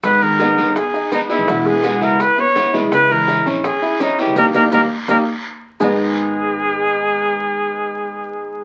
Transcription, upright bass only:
\new Staff \with { instrumentName = "Upright bass" } { \clef bass \time 4/4 \key gis \minor \tempo 4 = 166 gis,,4. g,,8 r4. r16 eis,,16 | e,,4. cis,8 r4. r16 bis,,16 | cis,4. ais,,8 r4. r16 cis,16 | dis,8 dis,8 dis,8 r8 dis,8 r4. |
gis,,1~ | gis,,1 | }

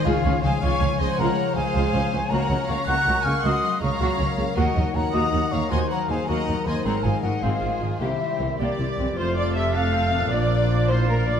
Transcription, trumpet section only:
\new Staff \with { instrumentName = "Trumpet section" } { \time 12/8 \key des \major \tempo 4. = 105 f'4 aes'8 des''4 c''8 bes'4 aes'2 | bes'4 des''8 ges''4 f''8 ees''4 des''2 | ges'4 bes'8 ees''4 des''8 c''8 bes'8 aes'8 bes'4 c''8 | bes'8 aes'8 ges'8 f'4. e'4. d''4. |
\key f \major c''8 d''8 e''8 f''4. d''4. c''8 bes'8 d''8 | }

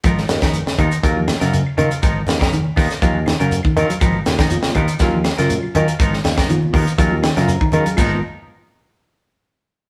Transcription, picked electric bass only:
\new Staff \with { instrumentName = "Picked electric bass" } { \clef bass \time 4/4 \key gis \dorian \tempo 4 = 121 gis,,8 dis,16 eis,,8 r16 dis,16 r16 dis,8. fis,8 r16 dis16 r16 | gis,,8 dis,16 eis,,8 r16 dis,16 r16 dis,8. fis,8 r16 dis16 r16 | gis,,8 dis,16 eis,,8 r16 dis,16 r16 dis,8. fis,8 r16 dis16 r16 | gis,,8 dis,16 eis,,8 r16 dis,16 r16 dis,8. fis,8 r16 dis16 r16 |
gis,,8 r2. r8 | }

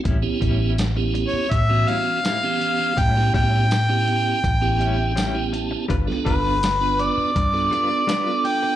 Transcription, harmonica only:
\new Staff \with { instrumentName = "Harmonica" } { \time 4/4 \key a \dorian \tempo 4 = 82 r4 \tuplet 3/2 { r4 cis''8 } e''8 f''4. | g''8 g''2. r8 | r8 b'4 d''2 g''8 | }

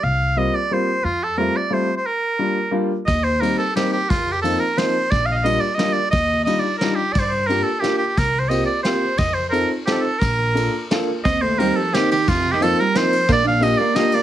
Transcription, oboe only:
\new Staff \with { instrumentName = "Oboe" } { \time 3/4 \key bes \major \tempo 4 = 178 f''4 ees''8 d''8 c''4 | f'8 a'8 bes'8 d''8 c''8. c''16 | bes'2 r4 | ees''8 c''8 bes'8 a'8 g'8 g'8 |
\tuplet 3/2 { f'4 g'8 } a'8 bes'8 c''4 | d''8 f''32 ees''32 f''16 ees''8 d''8 ees''8 d''8 | ees''4 ees''8 d''8 bes'8 g'8 | d''32 c''32 d''16 c''8 bes'8 a'8 g'8 g'32 r32 g'16 |
\tuplet 3/2 { bes'4 c''8 } ees''8 d''8 c''4 | ees''8 c''16. c''32 bes'8 r8 g'32 a'32 g'16 a'8 | bes'2 r4 | ees''8 c''8 bes'8 a'8 g'8 g'8 |
\tuplet 3/2 { f'4 g'8 } a'8 bes'8 c''4 | d''8 f''8 ees''8 d''8 ees''8 d''8 | }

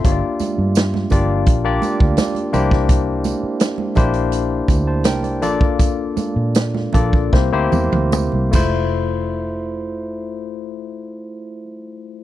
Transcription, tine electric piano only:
\new Staff \with { instrumentName = "Tine electric piano" } { \time 4/4 \key f \major \tempo 4 = 80 << { <e'' c'''>16 r2. r8. | r2 r8. <c'' a''>16 <bes' g''>16 d''8 r16 | r1 | r1 | } \\ { <bes d' f' g' des'' d''>4~ <bes d' f' g' des'' d''>16 r16 <bes d' f' g' d''>8. <bes d' f' g' d''>4~ <bes d' f' g' d''>16 <bes d' e' g' c''>8~ | <bes d' e' g' c''>4~ <bes d' e' g' c''>16 r16 <bes d' e' g' c''>8. r4 r16 <bes d' f' a' d''>8~ | <bes d' f' a' d''>4~ <bes d' f' a' d''>16 r16 <bes d' f' a' d''>8 <bes c' e' g' c''>16 <bes c' e' g' c''>4~ <bes c' e' g' c''>16 <a e' f' c''>8~ | <a e' f' c''>1 | } >> }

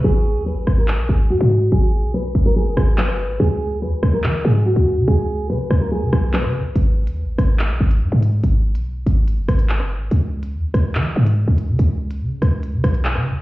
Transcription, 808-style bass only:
\new Staff \with { instrumentName = "808-style bass" } { \clef bass \time 4/4 \key gis \minor \tempo 4 = 143 gis,,8. dis,16. gis,,16. gis,,8. b,,16 gis,,8 gis,16 gis,8. | gis,,8. b,,8. gis,,8. fis,,16 gis,,8. fis,,16. gis,,16. | cis,4 e,16 cis,16 cis,8 e8 gis,8. cis,8 cis16 | cis,4 cis8 cis,8. cis16 b,,8. cis16. b,,16. |
gis,,8. dis,16. gis,,16. gis,,8. b,,16 gis,,8 gis,16 gis,8. | gis,,8. b,,8. gis,,8. fis,,16 gis,,8. fis,,16. gis,,16. | cis,4 e,16 cis,16 cis,8 e8 gis,8. cis,8 cis16 | cis,4 cis8 cis,8. cis16 b,,8. cis16. b,,16. | }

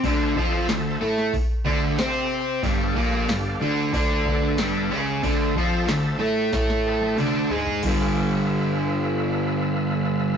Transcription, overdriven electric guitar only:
\new Staff \with { instrumentName = "Overdriven electric guitar" } { \clef bass \time 4/4 \key g \mixolydian \tempo 4 = 92 <d d'>8 <f f'>8 d8 <a a'>8 r8 <d d'>8 <c' c''>4 | <g, g>8 <bes, bes>8 g,8 <d d'>8 <d d'>4 <g, g>8 <cis cis'>8 | <d d'>8 <f f'>8 d8 <a a'>8 <a a'>4 <d d'>8 <aes aes'>8 | <g, d g>1 | }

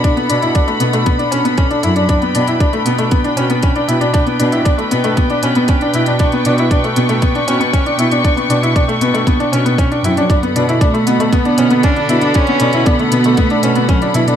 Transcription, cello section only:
\new Staff \with { instrumentName = "Cello section" } { \clef bass \time 4/4 \key g \lydian \tempo 4 = 117 r8 b,8 r8 b,8 r8 b,8 r8 fis,8 | r8 b,8 r8 b,8 r8 b,8 r8 b,8 | r8 b,8 r8 b,8 r8 b,8 r8 b,8 | r8 b,8 r8 b,8 r8 b,8 r8 b,8 |
r8 b,8 r8 b,8 r8 b,8 r8 fis,8 | r8 b,8 r8 b,8 r8 b,8 r8 b,8 | r8 b,8 r8 b,8 r8 b,8 r8 b,8 | }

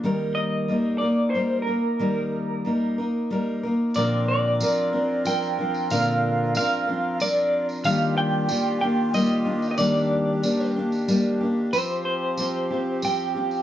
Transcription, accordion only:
\new Staff \with { instrumentName = "Accordion" } { \time 3/4 \key bes \major \tempo 4 = 92 << { r2. | r2. | <c' bes'>2.~ | <c' bes'>2. |
<ees g'>2.~ | <ees g'>2. | <f g'>2. | } \\ { r2. | r2. | f'2.~ | f'2.~ |
f'2. | d'2. | c'2. | } >> }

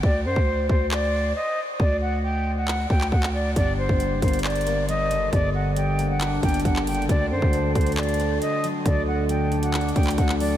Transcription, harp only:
\new Staff \with { instrumentName = "Harp" } { \time 4/4 \key g \minor \tempo 4 = 136 r1 | r1 | g,4 g8 bes4 bes8 g8 d8 | g,4 g8 bes8 d'8 bes8 g8 d8 |
d4 a8 fis'8 a'4 a8 fis8 | d4 a8 d'8 d''8 d'8 a8 fis8 | }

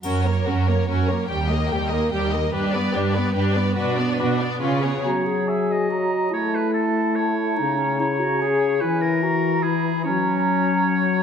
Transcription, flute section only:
\new Staff \with { instrumentName = "Flute section" } { \time 3/4 \key dis \minor \tempo 4 = 144 r2. | r2. | r2. | r2. |
\key fis \mixolydian ais''4 gis''4 ais''4 | a''4 a''2 | ais''2 gis''4 | gis''4 ais''4 b''4 |
ais''2. | }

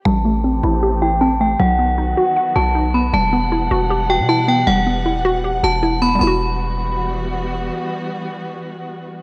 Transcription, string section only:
\new Staff \with { instrumentName = "String section" } { \time 4/4 \key e \minor \tempo 4 = 156 << { <e a g'>1 | <dis fis fis'>1 | <e g fis''>1~ | <e g fis''>1 |
<e g b fis'>1~ | <e g b fis'>1 | } \\ { c'1 | b1~ | b1~ | b1 |
r1 | r1 | } >> }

